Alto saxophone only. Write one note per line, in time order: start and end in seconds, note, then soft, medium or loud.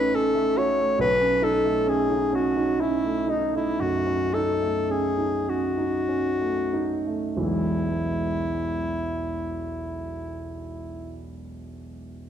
0.00 0.16 B4 medium
0.15 0.59 A4 medium
0.57 1.00 C#5 medium
1.00 1.45 B4 loud
1.43 1.90 A4 medium
1.89 2.36 G#4 medium
2.35 2.82 F#4 medium
2.81 3.31 E4 medium
3.30 3.54 D#4 medium
3.56 3.82 E4 medium
3.81 4.35 F#4 medium
4.34 4.92 A4 medium
4.91 5.50 G#4 medium
5.49 7.20 F#4 medium
7.37 11.22 E4 medium